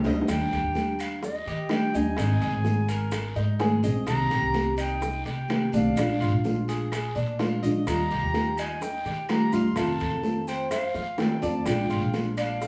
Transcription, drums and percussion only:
0.04 high bongo medium
0.04 high conga soft
0.04 low timbale medium
0.04 short guiro medium
0.21 low bongo medium
0.27 high bongo medium
0.27 high conga soft
0.27 high timbale medium
0.27 long guiro medium
0.27 claves medium
0.27 maracas medium
0.51 high bongo soft
0.51 high conga soft
0.51 high timbale medium
0.51 maracas soft
0.75 high bongo soft
0.75 high conga medium
0.75 high timbale medium
0.75 short guiro medium
0.75 maracas soft
0.99 high timbale medium
0.99 short guiro medium
0.99 claves medium
0.99 maracas medium
1.23 high bongo medium
1.23 high conga soft
1.23 long guiro medium
1.23 maracas medium
1.46 high bongo soft
1.46 high conga soft
1.46 high timbale medium
1.46 maracas soft
1.69 high bongo medium
1.69 low bongo medium
1.69 high conga medium
1.69 high timbale medium
1.69 short guiro medium
1.69 claves medium
1.69 maracas soft
1.94 high bongo soft
1.94 high conga medium
1.94 short guiro medium
1.94 maracas medium
2.17 high bongo medium
2.17 high conga soft
2.17 high timbale medium
2.17 long guiro medium
2.17 claves medium
2.17 maracas medium
2.41 high conga soft
2.41 high timbale medium
2.41 maracas soft
2.64 high bongo medium
2.64 high conga medium
2.64 short guiro medium
2.64 maracas soft
2.88 high bongo soft
2.88 high conga soft
2.88 high timbale medium
2.88 short guiro medium
2.88 maracas medium
3.11 high bongo medium
3.11 high conga soft
3.11 high timbale medium
3.11 long guiro medium
3.11 claves medium
3.11 maracas medium
3.36 high bongo soft
3.36 high conga soft
3.36 maracas soft
3.60 high bongo medium
3.60 low bongo medium
3.60 high conga medium
3.60 high timbale medium
3.60 short guiro medium
3.60 maracas soft
3.83 high bongo soft
3.83 short guiro medium
3.83 maracas medium
4.06 high bongo medium
4.06 high conga soft
4.06 high timbale medium
4.06 long guiro medium
4.06 claves medium
4.06 maracas medium
4.30 high bongo soft
4.30 high conga soft
4.30 high timbale medium
4.30 maracas soft
4.54 high bongo medium
4.54 high conga medium
4.54 high timbale medium
4.54 short guiro medium
4.54 maracas soft
4.77 high timbale medium
4.77 short guiro medium
4.77 claves medium
4.77 maracas medium
5.00 high bongo medium
5.00 high conga soft
5.00 long guiro medium
5.00 maracas medium
5.25 high bongo soft
5.25 high conga soft
5.25 high timbale medium
5.25 maracas soft
5.48 high bongo medium
5.48 low bongo medium
5.48 high conga medium
5.48 high timbale medium
5.48 short guiro medium
5.48 claves medium
5.48 maracas soft
5.72 high bongo soft
5.72 high conga medium
5.72 short guiro medium
5.72 maracas medium
5.96 high bongo medium
5.96 high timbale medium
5.96 long guiro medium
5.96 claves medium
5.96 maracas medium
6.21 high conga soft
6.21 high timbale medium
6.21 maracas soft
6.44 high bongo medium
6.44 high conga medium
6.44 short guiro medium
6.44 maracas soft
6.68 high bongo soft
6.68 high conga soft
6.68 high timbale medium
6.68 short guiro medium
6.68 maracas medium
6.92 high bongo medium
6.92 high conga soft
6.92 high timbale medium
6.92 long guiro medium
6.92 claves medium
6.92 maracas medium
7.16 high bongo soft
7.16 high conga soft
7.16 maracas soft
7.39 high bongo medium
7.39 low bongo medium
7.39 high conga medium
7.39 high timbale medium
7.39 short guiro medium
7.39 maracas soft
7.63 high bongo soft
7.63 low conga medium
7.63 short guiro medium
7.63 maracas medium
7.87 high bongo medium
7.87 high timbale medium
7.87 long guiro medium
7.87 claves medium
7.87 maracas medium
8.11 high bongo soft
8.11 high conga soft
8.11 high timbale medium
8.11 maracas soft
8.34 high bongo medium
8.34 high conga medium
8.34 high timbale medium
8.34 short guiro medium
8.34 maracas soft
8.57 high timbale medium
8.57 short guiro medium
8.57 claves medium
8.57 maracas medium
8.81 high bongo medium
8.81 high conga soft
8.81 long guiro medium
8.81 maracas medium
9.05 high bongo soft
9.05 high conga soft
9.05 high timbale medium
9.05 maracas soft
9.29 high bongo medium
9.29 low bongo medium
9.29 high conga medium
9.29 high timbale medium
9.29 short guiro medium
9.29 claves medium
9.29 maracas soft
9.52 high bongo soft
9.52 high conga medium
9.52 short guiro medium
9.52 maracas medium
9.76 high bongo medium
9.76 high conga soft
9.76 high timbale medium
9.76 long guiro medium
9.76 claves medium
9.76 maracas medium
10.00 high timbale medium
10.00 maracas soft
10.23 high bongo medium
10.23 high conga medium
10.23 short guiro medium
10.23 maracas soft
10.47 high bongo soft
10.47 high conga soft
10.47 high timbale medium
10.47 short guiro medium
10.47 maracas medium
10.71 high bongo medium
10.71 high conga soft
10.71 high timbale medium
10.71 long guiro medium
10.71 claves medium
10.71 maracas medium
10.94 high bongo soft
10.94 high conga soft
10.94 maracas soft
11.18 high bongo medium
11.18 low bongo medium
11.18 high conga medium
11.18 high timbale medium
11.18 low timbale medium
11.18 short guiro medium
11.18 maracas soft
11.42 high bongo soft
11.42 high conga soft
11.42 short guiro medium
11.42 maracas medium
11.66 high bongo medium
11.66 high timbale medium
11.66 long guiro medium
11.66 claves medium
11.66 maracas medium
11.89 high bongo soft
11.89 high conga soft
11.89 high timbale medium
11.89 maracas soft
12.13 high bongo medium
12.13 high conga medium
12.13 high timbale medium
12.13 short guiro medium
12.13 maracas soft
12.37 high timbale medium
12.37 short guiro medium
12.37 claves medium
12.37 maracas medium
12.60 high bongo medium
12.60 high conga soft
12.60 long guiro medium
12.60 maracas medium

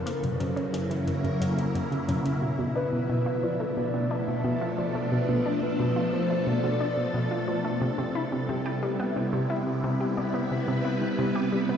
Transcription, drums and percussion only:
0.07 closed hi-hat medium
0.24 closed hi-hat soft
0.24 high tom medium
0.40 closed hi-hat soft
0.57 closed hi-hat soft
0.74 closed hi-hat medium
0.91 closed hi-hat soft
1.08 closed hi-hat soft
1.25 closed hi-hat soft
1.42 closed hi-hat medium
1.58 closed hi-hat soft
1.75 closed hi-hat soft
1.92 closed hi-hat soft
2.09 closed hi-hat medium
2.09 high tom soft
2.26 closed hi-hat soft

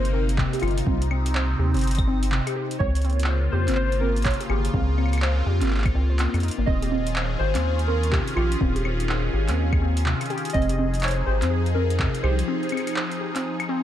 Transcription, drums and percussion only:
0.05 closed hi-hat soft
0.29 closed hi-hat medium
0.38 kick medium
0.38 clap loud
0.53 closed hi-hat medium
0.53 closed hi-hat soft
0.60 closed hi-hat soft
0.63 closed hi-hat soft
0.63 claves medium
0.68 closed hi-hat soft
0.71 closed hi-hat soft
0.78 closed hi-hat medium
0.87 kick loud
1.02 closed hi-hat medium
1.11 claves medium
1.26 closed hi-hat medium
1.35 clap loud
1.74 closed hi-hat soft
1.77 closed hi-hat soft
1.79 closed hi-hat soft
1.81 closed hi-hat soft
1.84 closed hi-hat soft
1.87 closed hi-hat medium
1.91 closed hi-hat medium
1.95 kick loud
1.95 closed hi-hat medium
1.95 claves medium
2.23 closed hi-hat medium
2.32 clap loud
2.47 closed hi-hat medium
2.47 claves soft
2.71 closed hi-hat medium
2.80 kick loud
2.95 closed hi-hat medium
2.95 closed hi-hat soft
3.02 closed hi-hat soft
3.05 closed hi-hat soft
3.10 closed hi-hat soft
3.13 closed hi-hat soft
3.20 closed hi-hat medium
3.24 clap loud
3.68 clap soft
3.68 closed hi-hat medium
3.70 clap soft
3.73 clap soft
3.75 clap medium
3.92 closed hi-hat soft
4.16 closed hi-hat soft
4.22 kick medium
4.22 clap loud
4.22 closed hi-hat soft
4.25 closed hi-hat soft
4.31 closed hi-hat medium
4.34 closed hi-hat medium
4.40 closed hi-hat medium
4.50 claves medium
4.65 closed hi-hat medium
4.74 kick loud
4.98 claves soft
5.06 claves soft
5.13 closed hi-hat medium
5.13 claves soft
5.18 claves medium
5.22 clap loud
5.61 clap soft
5.61 closed hi-hat medium
5.64 clap soft
5.66 clap soft
5.68 clap soft
5.71 clap soft
5.74 clap soft
5.78 clap medium
5.82 kick loud
5.82 clap medium
5.82 closed hi-hat soft
5.82 claves medium
6.19 clap loud
6.19 closed hi-hat medium
6.34 closed hi-hat soft
6.34 claves soft
6.40 closed hi-hat soft
6.43 closed hi-hat soft
6.48 closed hi-hat soft
6.51 closed hi-hat soft
6.67 kick loud
6.82 closed hi-hat medium
7.07 closed hi-hat medium
7.16 clap loud
7.55 clap medium
7.55 closed hi-hat medium
7.79 closed hi-hat soft
8.03 closed hi-hat medium
8.13 kick medium
8.13 clap loud
8.27 closed hi-hat medium
8.37 claves medium
8.52 closed hi-hat medium
8.61 kick loud
8.76 closed hi-hat medium
8.85 claves medium
9.00 closed hi-hat medium
9.09 clap loud
9.48 clap medium
9.48 closed hi-hat medium
9.73 kick loud
9.73 claves medium
9.97 closed hi-hat medium
10.06 clap loud
10.21 closed hi-hat medium
10.21 claves soft
10.26 closed hi-hat soft
10.30 closed hi-hat soft
10.38 closed hi-hat soft
10.45 closed hi-hat medium
10.50 closed hi-hat medium
10.54 kick loud
10.54 closed hi-hat soft
10.62 closed hi-hat soft
10.69 closed hi-hat medium
10.94 closed hi-hat soft
11.00 clap loud
11.00 closed hi-hat soft
11.03 closed hi-hat soft
11.08 closed hi-hat soft
11.11 closed hi-hat medium
11.42 clap medium
11.42 closed hi-hat medium
11.66 closed hi-hat soft
11.90 closed hi-hat medium
12.00 kick medium
12.00 clap loud
12.15 closed hi-hat medium
12.24 claves medium
12.39 closed hi-hat medium
12.63 closed hi-hat soft
12.69 closed hi-hat soft
12.69 claves medium
12.77 closed hi-hat soft
12.77 claves soft
12.80 claves soft
12.87 closed hi-hat medium
12.87 claves soft
12.93 clap loud
12.93 claves soft
13.11 closed hi-hat soft
13.36 clap medium
13.36 closed hi-hat medium
13.60 closed hi-hat soft
13.60 claves medium

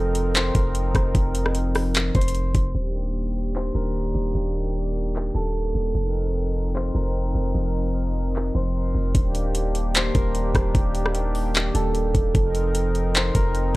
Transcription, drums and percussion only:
0.15 closed hi-hat medium
0.35 clap loud
0.35 closed hi-hat medium
0.55 kick loud
0.55 closed hi-hat medium
0.75 closed hi-hat medium
0.95 kick loud
0.95 cross-stick loud
0.95 closed hi-hat medium
1.15 kick loud
1.15 closed hi-hat medium
1.35 closed hi-hat medium
1.46 cross-stick loud
1.55 closed hi-hat medium
1.75 cross-stick loud
1.75 open hi-hat medium
1.95 clap loud
1.95 closed hi-hat medium
2.15 kick loud
2.15 closed hi-hat soft
2.21 closed hi-hat medium
2.28 closed hi-hat medium
2.35 closed hi-hat medium
2.55 kick loud
2.55 closed hi-hat medium
3.56 clap loud
4.95 open hi-hat medium
5.16 clap loud
6.76 clap loud
8.15 open hi-hat medium
8.36 clap loud
9.15 kick loud
9.15 closed hi-hat medium
9.35 closed hi-hat medium
9.55 closed hi-hat medium
9.75 closed hi-hat medium
9.95 clap loud
9.95 closed hi-hat medium
10.15 kick loud
10.15 closed hi-hat medium
10.35 closed hi-hat medium
10.55 kick medium
10.55 cross-stick loud
10.55 closed hi-hat medium
10.75 kick loud
10.75 closed hi-hat medium
10.95 closed hi-hat medium
11.06 cross-stick loud
11.15 closed hi-hat medium
11.35 open hi-hat medium
11.55 clap loud
11.55 closed hi-hat medium
11.75 closed hi-hat medium
11.95 closed hi-hat medium
12.15 kick loud
12.15 closed hi-hat medium
12.35 kick loud
12.35 closed hi-hat medium
12.55 closed hi-hat medium
12.75 closed hi-hat medium
12.95 closed hi-hat medium
13.15 clap loud
13.15 closed hi-hat medium
13.35 kick loud
13.35 closed hi-hat medium
13.55 closed hi-hat medium

